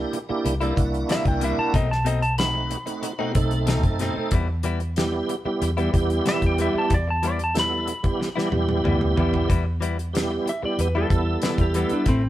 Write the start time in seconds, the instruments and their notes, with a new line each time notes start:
Already playing: tonewheel organ A#3 D4 E4 G4
0.13 muted clean electric guitar stroke, closed hi-hat
0.29 tonewheel organ A#3 D4 E4 G4, muted clean electric guitar stroke, muted fingered electric bass stroke
0.45 fingered electric bass C2, muted clean electric guitar stroke, closed hi-hat
0.61 clean electric guitar C3 G3 A#3 E4, tonewheel organ A#3 D4 E4 A4, closed hi-hat
0.76 fingered electric bass C2, tonewheel organ A#3 D4 E4 F#4, kick, closed hi-hat
0.94 closed hi-hat
1.09 clean electric guitar C3 G3 A#3 E4, electric slide guitar E5, snare, closed hi-hat
1.25 fingered electric bass C2, electric slide guitar G5, muted clean electric guitar stroke, kick, closed hi-hat
1.41 clean electric guitar C3 G3 A#3 E4, electric slide guitar E5, closed hi-hat
1.57 clean electric guitar G3 A#3 E4, electric slide guitar A5, muted fingered electric bass stroke
1.73 fingered electric bass B1, clean electric guitar B2 A3 C4 D#4, electric slide guitar D#5, kick, closed hi-hat
1.90 electric slide guitar A5, muted clean electric guitar stroke, snare
2.05 clean electric guitar B2 A3 C4 D#4, electric slide guitar D#5, closed hi-hat
2.21 electric slide guitar A5, muted clean electric guitar stroke, closed hi-hat
2.38 tonewheel organ A3 C4 D#4 F#4, electric slide guitar B5, snare, closed hi-hat
2.54 muted clean electric guitar stroke
2.70 muted clean electric guitar stroke, closed hi-hat
2.86 tonewheel organ A3 C4 D#4 F#4, muted clean electric guitar stroke, closed hi-hat
3.03 muted clean electric guitar stroke, closed hi-hat
3.19 clean electric guitar B2 A3 C4 D#4, tonewheel organ A3 C4 D#4 F#4
3.35 fingered electric bass B1, tonewheel organ A3 C4 D#4 A4, muted clean electric guitar stroke, kick, closed hi-hat
3.51 closed hi-hat
3.67 clean electric guitar B2 A3 C4 D#4, snare, closed hi-hat
3.83 fingered electric bass F#2, muted clean electric guitar stroke, kick, closed hi-hat
3.99 clean electric guitar B2 A3 C4 D#4, snare, closed hi-hat
4.16 clean electric guitar A3 C4 D#4, muted fingered electric bass stroke
4.31 fingered electric bass E2, clean electric guitar E3 G3 B3 E4, kick, closed hi-hat
4.49 muted clean electric guitar stroke
4.63 clean electric guitar E3 G3 B3 E4, closed hi-hat
4.80 muted clean electric guitar stroke, closed hi-hat
4.96 tonewheel organ G3 B3 E4 G4, snare, closed hi-hat
5.13 muted clean electric guitar stroke
5.29 muted clean electric guitar stroke, closed hi-hat
5.45 tonewheel organ G3 B3 E4 G4, muted fingered electric bass stroke, muted clean electric guitar stroke
5.62 fingered electric bass E2, muted clean electric guitar stroke, closed hi-hat
5.77 clean electric guitar E3 G3 B3 E4, tonewheel organ G3 B3 E4 G4, closed hi-hat
5.93 fingered electric bass E2, tonewheel organ G3 B3 E4 G4, muted clean electric guitar stroke, kick, closed hi-hat
6.10 closed hi-hat
6.25 clean electric guitar E3 G3 B3 E4, electric slide guitar E5, snare, closed hi-hat
6.42 fingered electric bass E2, muted clean electric guitar stroke, kick, closed hi-hat
6.46 electric slide guitar G5
6.58 clean electric guitar E3 G3 B3 E4, electric slide guitar E5, closed hi-hat
6.74 clean electric guitar G3 B3 E4, muted fingered electric bass stroke
6.78 electric slide guitar A5
6.90 fingered electric bass E2, kick, closed hi-hat
6.94 electric slide guitar D5
7.08 electric slide guitar A5, muted clean electric guitar stroke
7.23 clean electric guitar E3 G3 B3 E4, closed hi-hat
7.27 electric slide guitar D5
7.39 muted clean electric guitar stroke, closed hi-hat
7.44 electric slide guitar A5
7.54 tonewheel organ G3 B3 E4 A4, snare, closed hi-hat
7.59 electric slide guitar B5
7.71 muted clean electric guitar stroke
7.87 muted clean electric guitar stroke, closed hi-hat
8.03 tonewheel organ G3 B3 E4 G4, muted clean electric guitar stroke, kick, closed hi-hat
8.20 muted clean electric guitar stroke, snare
8.36 clean electric guitar E3 G3 B3 E4, tonewheel organ G3 B3 E4 G4, snare
8.51 fingered electric bass E2, tonewheel organ G3 B3 E4 G4, muted clean electric guitar stroke, high tom
8.69 high tom
8.84 fingered electric bass D2, clean electric guitar E3 G3 B3 E4, mid tom
9.01 muted clean electric guitar stroke, mid tom
9.17 fingered electric bass E2, clean electric guitar E3 G3 B3 E4, floor tom
9.33 clean electric guitar G3 B3 E4, floor tom
9.49 fingered electric bass E2, clean electric guitar E3 G3 B3 E4, kick, closed hi-hat
9.65 muted clean electric guitar stroke
9.81 clean electric guitar E3 G3 B3 E4, closed hi-hat
9.98 muted clean electric guitar stroke, closed hi-hat
10.13 tonewheel organ G3 B3 E4 G4, snare, closed hi-hat
10.31 muted clean electric guitar stroke
10.46 electric slide guitar E5, muted clean electric guitar stroke, closed hi-hat
10.63 tonewheel organ G3 B3 E4 G4, electric slide guitar D5, muted clean electric guitar stroke, muted fingered electric bass stroke
10.79 fingered electric bass E2, electric slide guitar B4, muted clean electric guitar stroke, closed hi-hat
10.95 clean electric guitar E3 G3 B3 E4, tonewheel organ G3 B3 E4 G4, electric slide guitar A4
11.10 fingered electric bass E2, tonewheel organ G3 B3 E4 A4, muted clean electric guitar stroke, kick, closed hi-hat
11.42 clean electric guitar E3 G3 B3, snare, closed hi-hat
11.46 clean electric guitar E4
11.58 fingered electric bass E2, electric slide guitar G4, muted clean electric guitar stroke, kick, closed hi-hat
11.74 clean electric guitar E3 G3 B3 E4, closed hi-hat
11.89 clean electric guitar B3 E4, electric slide guitar D4, muted fingered electric bass stroke, closed hi-hat
11.95 clean electric guitar G3
12.06 fingered electric bass A1, clean electric guitar A2 A3 C4 E4, electric slide guitar C4, kick, closed hi-hat
12.23 muted clean electric guitar stroke